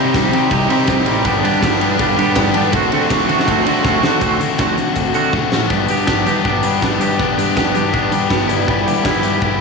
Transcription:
Already playing: fingered electric bass C3, clean electric guitar C3 G3 C4 D#4 G4
0.14 fingered electric bass C2, clean electric guitar C3 G3 C4 D#4 G4, kick, snare, ride
0.31 fingered electric bass C3, clean electric guitar C3 G3 C4 D#4 G4, ride
0.51 fingered electric bass C2, clean electric guitar C3 G3 C4 D#4 G4, kick, ride
0.68 clean electric guitar C3 G3 C4 D#4 G4, fingered electric bass C3, ride
0.87 fingered electric bass C2, clean electric guitar C3 G3 C4 D#4 G4, kick, snare, ride
1.06 fingered electric bass A1, clean electric guitar C3 G3 C4 D#4 G4, ride
1.25 fingered electric bass G1, clean electric guitar G2 D3 G3 B3 D4 G4, kick, ride
1.42 clean electric guitar G2 D3 G3 B3 D4 G4, fingered electric bass G2, ride
1.61 fingered electric bass G1, clean electric guitar G2 D3 G3 B3 D4 G4, kick, snare, ride
1.80 fingered electric bass G2, clean electric guitar G2 D3 G3 B3 D4 G4, ride
1.99 fingered electric bass G1, clean electric guitar G2 D3 G3 B3 D4 G4, kick, ride
2.18 clean electric guitar G2 D3 G3 B3 D4 G4, fingered electric bass G2, ride
2.35 fingered electric bass G1, clean electric guitar G2 D3 G3 B3 D4, kick, snare, ride
2.39 clean electric guitar G4
2.54 fingered electric bass G2, clean electric guitar G2 D3 G3 B3 D4 G4, ride
2.73 fingered electric bass D2, clean electric guitar D3 A3 C4 F#4, kick, ride
2.92 fingered electric bass D3, clean electric guitar D3 A3 C4 F#4, ride
3.10 fingered electric bass D2, clean electric guitar D3 A3 C4 F#4, kick, snare, ride
3.29 fingered electric bass D3, clean electric guitar D3 A3 C4 F#4, ride
3.39 snare
3.44 fingered electric bass D2, overdriven electric guitar A3 C4 F#4, kick
3.48 clean electric guitar D3 A3 C4 F#4, ride
3.64 fingered electric bass D3, clean electric guitar D3 A3, overdriven electric guitar C4 F#4, ride
3.68 clean electric guitar C4 F#4
3.84 fingered electric bass D2, clean electric guitar D3 A3 C4 F#4, kick, snare
4.02 fingered electric bass D3, clean electric guitar D3 A3 C4 F#4, snare
4.21 fingered electric bass D2, clean electric guitar D3 A3 C4 F#4, kick, closed hi-hat
4.39 fingered electric bass D3, overdriven electric guitar C4 F#4, closed hi-hat
4.59 fingered electric bass D2, clean electric guitar D3 A3 C4 F#4, kick, snare, closed hi-hat
4.77 fingered electric bass D3, muted clean electric guitar stroke, closed hi-hat
4.96 fingered electric bass D2, muted clean electric guitar stroke, kick, closed hi-hat
5.14 fingered electric bass D3, clean electric guitar D3 A3 C4 F#4, closed hi-hat
5.33 fingered electric bass D2, overdriven electric guitar A3 C4 F#4, kick
5.50 fingered electric bass A1, overdriven electric guitar C4 F#4, muted clean electric guitar stroke, snare
5.68 fingered electric bass G1, overdriven electric guitar B3 D4 G4, kick
5.72 clean electric guitar G2
5.88 fingered electric bass G2, clean electric guitar G4, closed hi-hat
6.05 fingered electric bass G1, overdriven electric guitar B3 G4, clean electric guitar D4, kick, snare
6.26 fingered electric bass G2, overdriven electric guitar D4, clean electric guitar G4, closed hi-hat
6.45 fingered electric bass G1, overdriven electric guitar B3 G4, clean electric guitar D4, kick
6.63 fingered electric bass G2, clean electric guitar G3, closed hi-hat
6.82 fingered electric bass G1, clean electric guitar B3, overdriven electric guitar D4 G4, kick, snare
7.00 fingered electric bass G2, overdriven electric guitar D4, clean electric guitar G4, closed hi-hat
7.18 fingered electric bass G1, clean electric guitar G2, overdriven electric guitar B3 D4 G4, kick
7.38 fingered electric bass G2, clean electric guitar G4, closed hi-hat
7.55 fingered electric bass G1, overdriven electric guitar B3 G4, clean electric guitar D4, kick, snare
7.75 fingered electric bass G2, overdriven electric guitar D4, clean electric guitar G4, closed hi-hat
7.93 fingered electric bass G1, overdriven electric guitar B3 G4, clean electric guitar D4, kick
8.11 fingered electric bass G2, clean electric guitar G3, closed hi-hat
8.29 fingered electric bass G1, clean electric guitar B3, overdriven electric guitar D4 G4, kick, snare
8.48 fingered electric bass G1, overdriven electric guitar E3 B3 E4 G4, clean electric guitar G3, closed hi-hat
8.66 fingered electric bass G1, overdriven electric guitar E3 B3 E4 G4, clean electric guitar G3, kick
8.86 fingered electric bass G2, clean electric guitar G4, closed hi-hat
9.03 fingered electric bass G1, overdriven electric guitar E3 B3 G4, clean electric guitar E4, kick, snare
9.23 fingered electric bass G2, overdriven electric guitar B3 E4, clean electric guitar G4, closed hi-hat
9.40 fingered electric bass G1, overdriven electric guitar E3 B3 G4, clean electric guitar E4, kick

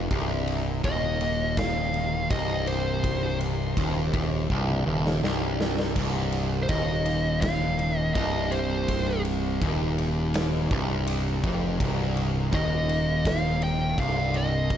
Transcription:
0.11 picked electric bass C1, distorted electric guitar C2, kick, ride
0.47 ride
0.84 picked electric bass D#1, distorted electric guitar D#2, lead electric guitar D#5, kick, ride
1.21 ride
1.57 lead electric guitar F5, kick, snare, ride
1.94 ride
2.30 picked electric bass C1, distorted electric guitar C2, lead electric guitar D#5, kick, ride
2.67 lead electric guitar C5, ride
3.04 kick, ride
3.41 ride
3.77 picked electric bass D#1, distorted electric guitar D#2, kick, ride
4.13 picked electric bass D#1, distorted electric guitar D#2, kick, ride
4.50 picked electric bass C1, distorted electric guitar C2, kick
4.68 high tom
4.86 picked electric bass D#1, distorted electric guitar D#2
5.06 snare
5.23 picked electric bass C1, distorted electric guitar C2, snare
5.61 snare
5.79 snare
5.96 picked electric bass C1, distorted electric guitar C2, kick, ride, splash
6.32 ride
6.63 lead electric guitar C5
6.69 picked electric bass D#1, distorted electric guitar D#2, lead electric guitar D#5, kick, ride
7.06 ride
7.41 lead electric guitar F5, kick, snare, ride
7.79 ride
7.97 lead electric guitar D#5
8.14 picked electric bass C1, distorted electric guitar C2, lead electric guitar D#5, kick, ride
8.52 lead electric guitar C5, ride
8.88 kick, ride
9.25 ride
9.62 picked electric bass D#1, distorted electric guitar D#2, kick, ride
9.98 ride
10.34 snare, ride
10.71 picked electric bass C1, distorted electric guitar C2, kick, ride
11.07 ride
11.44 picked electric bass F1, distorted electric guitar F2, kick, ride
11.80 picked electric bass C1, distorted electric guitar C2, kick, ride
12.17 ride
12.53 picked electric bass D#1, distorted electric guitar D#2, lead electric guitar D#5, kick, ride
12.89 ride
13.25 lead electric guitar F5, kick, snare, ride
13.62 lead electric guitar G5, ride
13.97 picked electric bass C1, distorted electric guitar C2, lead electric guitar F5, kick, ride
14.34 lead electric guitar D#5, ride
14.70 kick, ride

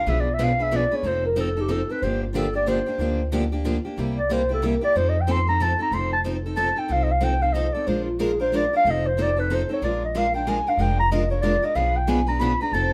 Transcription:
Already playing: clarinet F5
0.06 upright bass B1, steel-string acoustic guitar B2 F3 B3 D4 G#4 B4, clarinet E5
0.20 clarinet D5
0.34 clarinet E5
0.39 steel-string acoustic guitar B2 F3 B3 D4 G#4 B4
0.43 clarinet F5
0.59 steel-string acoustic guitar B3 D4 G#4 B4, clarinet E5
0.71 steel-string acoustic guitar B2 F3 B3 D4 G#4 B4
0.76 clarinet D5
0.91 steel-string acoustic guitar B3 D4 G#4 B4, clarinet C#5
1.03 upright bass F1, steel-string acoustic guitar F3 C4 D#4 A4
1.07 clarinet C5
1.26 clarinet A#4
1.36 steel-string acoustic guitar F3 C4 D#4 A4, clarinet A4
1.57 steel-string acoustic guitar C4 D#4 A4
1.61 clarinet G4
1.68 steel-string acoustic guitar F3 C4 D#4 A4, clarinet A4
1.89 steel-string acoustic guitar C4 D#4 A4, clarinet B4
2.02 upright bass G1, steel-string acoustic guitar D3 F3 A#3 D4 G4, clarinet C5
2.24 clarinet F4
2.35 steel-string acoustic guitar D3 F3 A#3 D4 G4, clarinet A4
2.53 steel-string acoustic guitar A#3 D4 G4, clarinet D5
2.67 steel-string acoustic guitar D3 F3 A#3 D4 G4, clarinet C5
2.86 steel-string acoustic guitar A#3 D4 G4
2.98 upright bass D2, steel-string acoustic guitar D3 F3 A#3 D4 G4
3.32 steel-string acoustic guitar D3 F3 A#3 D4 G4
3.52 steel-string acoustic guitar A#3 D4 G4
3.64 steel-string acoustic guitar D3 F3 A#3 D4 G4
3.85 steel-string acoustic guitar A#3 D4 G4
3.97 upright bass C2, steel-string acoustic guitar C3 G3 A#3 E4 G4
4.18 clarinet D5
4.30 steel-string acoustic guitar C3 G3 A#3 E4 G4, clarinet C5
4.49 steel-string acoustic guitar A#3 E4 G4
4.53 clarinet A4
4.62 steel-string acoustic guitar C3 G3 A#3 E4 G4
4.66 clarinet A#4
4.81 steel-string acoustic guitar A#3 E4 G4, clarinet D5
4.96 upright bass F2, steel-string acoustic guitar F3 C4 D#4 A4, clarinet C5
5.09 clarinet D#5
5.21 clarinet G5
5.27 steel-string acoustic guitar F3 C4 D#4 A4
5.31 clarinet C6
5.47 steel-string acoustic guitar C4 D#4 A4, clarinet A#5
5.60 steel-string acoustic guitar F3 C4 D#4 A4, clarinet A5
5.79 steel-string acoustic guitar C4 D#4 A4, clarinet A#5
5.91 upright bass F1, steel-string acoustic guitar F3 C4 D#4 A4, clarinet C6
6.13 clarinet A5
6.25 steel-string acoustic guitar F3 C4 D#4 A4
6.46 steel-string acoustic guitar C4 D#4 A4
6.56 steel-string acoustic guitar F3 C4 D#4 A4, clarinet A5
6.76 steel-string acoustic guitar C4 D#4 A4, clarinet G5
6.88 upright bass C2, steel-string acoustic guitar F3 C4 D#4 A4, clarinet F5
7.03 clarinet D#5
7.11 clarinet F5
7.21 steel-string acoustic guitar F3 C4 D#4 A4, clarinet G5
7.42 steel-string acoustic guitar C4 D#4 A4, clarinet F5
7.53 steel-string acoustic guitar F3 C4 D#4 A4, clarinet D#5
7.73 steel-string acoustic guitar C4 D#4 A4, clarinet D5
7.87 upright bass A#1, steel-string acoustic guitar F3 G#3 D4 F4 A#4, clarinet C5
8.05 clarinet F4
8.19 steel-string acoustic guitar F3 G#3 D4 F4 A#4, clarinet G#4
8.40 steel-string acoustic guitar D4 F4 A#4, clarinet C5
8.53 steel-string acoustic guitar F3 G#3 D4 F4 A#4, clarinet D5
8.73 steel-string acoustic guitar D4 F4 A#4, clarinet F5
8.85 upright bass F1, steel-string acoustic guitar F3 C4 D#4 A4
8.91 clarinet D#5
9.06 clarinet C5
9.18 steel-string acoustic guitar F3 C4 D#4 A4
9.22 clarinet D5
9.37 steel-string acoustic guitar C4 D#4 A4, clarinet B4
9.50 steel-string acoustic guitar F3 C4 D#4 A4, clarinet C5
9.69 steel-string acoustic guitar C4 D#4 A4
9.73 clarinet C#5
9.82 upright bass A#1, steel-string acoustic guitar F3 G#3 D4 F4 A#4, clarinet D5
10.05 clarinet D#5
10.15 steel-string acoustic guitar F3 G#3 D4 F4 A#4, clarinet F5
10.34 steel-string acoustic guitar D4 F4 A#4, clarinet G5
10.47 steel-string acoustic guitar F3 G#3 D4 F4 A#4, clarinet G#5
10.67 steel-string acoustic guitar D4 F4 A#4, clarinet F5
10.77 upright bass F1, steel-string acoustic guitar F3 G#3 D4 F4 A#4, clarinet G5
10.99 clarinet A#5
11.11 steel-string acoustic guitar F3 G#3 D4 F4 A#4, clarinet D#5
11.30 steel-string acoustic guitar D4 F4 A#4, clarinet C#5
11.41 steel-string acoustic guitar F3 G#3 D4 F4 A#4, clarinet D5
11.62 steel-string acoustic guitar D4 F4 A#4, clarinet D#5
11.75 upright bass B1, steel-string acoustic guitar B2 F3 B3 D4 G#4 B4, clarinet F5
11.96 clarinet G5
12.07 steel-string acoustic guitar B2 F3 B3 D4 G#4 B4, clarinet G#5
12.27 steel-string acoustic guitar B3 D4 G#4 B4, clarinet A#5
12.40 steel-string acoustic guitar B2 F3 B3 D4 G#4 B4, clarinet B5
12.61 steel-string acoustic guitar B3 D4 G#4 B4, clarinet A#5
12.72 upright bass F1, steel-string acoustic guitar F3 C4 D#4 A4, clarinet A5

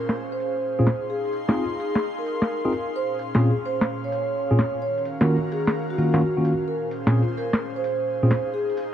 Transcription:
Already playing: analog synth pad A#2 C#4 G#4 C5 F5, vibraphone A#4
0.09 snare
0.32 vibraphone C5
0.40 open hi-hat
0.79 tine electric piano A#2 C4 C#4 F4 G#4
0.87 analog synth pad D#4 C6, snare, open hi-hat
1.10 vibraphone G#4
1.25 open hi-hat
1.33 open hi-hat
1.49 tine electric piano C4 D#4 F4 G#4, vibraphone F4, snare
1.80 vibraphone G#4, open hi-hat
1.95 snare
2.18 vibraphone A#4
2.26 open hi-hat
2.42 snare
2.65 tine electric piano C4 D#4 F4 G#4
2.73 open hi-hat
2.96 analog synth pad A#2 C#4, vibraphone C5
3.19 open hi-hat
3.35 tine electric piano A#2 C4 C#4 F4 G#4, vibraphone G#4, snare
3.65 vibraphone C5, open hi-hat
3.81 snare
4.04 vibraphone C#5
4.12 open hi-hat
4.51 tine electric piano A#2 C4 C#4 F4 G#4
4.59 snare, open hi-hat
4.82 analog synth pad D#3 F#4 A#4, vibraphone C#5
4.98 open hi-hat
5.05 open hi-hat
5.21 tine electric piano D#3 A#3 C#4 F4 F#4, vibraphone A#4, snare
5.52 vibraphone G#4, open hi-hat
5.67 snare
5.90 vibraphone F#4
5.98 tine electric piano D#3 A#3 C#4 F4 F#4, open hi-hat
6.14 tine electric piano D#3 A#3 C#4 F4 F#4, snare
6.37 tine electric piano D#3 A#3 C#4 F4 F#4
6.45 open hi-hat
6.68 analog synth pad A#2 G#4 C5, vibraphone A#4
6.91 open hi-hat
7.07 tine electric piano A#2 C4 C#4 F4 G#4, vibraphone F4, snare
7.37 vibraphone A#4, open hi-hat
7.53 snare
7.76 vibraphone C5
7.84 open hi-hat
8.23 tine electric piano A#2 C4 C#4 F4 G#4
8.31 analog synth pad D#4 C5, snare, open hi-hat
8.54 vibraphone G#4
8.70 open hi-hat
8.77 open hi-hat

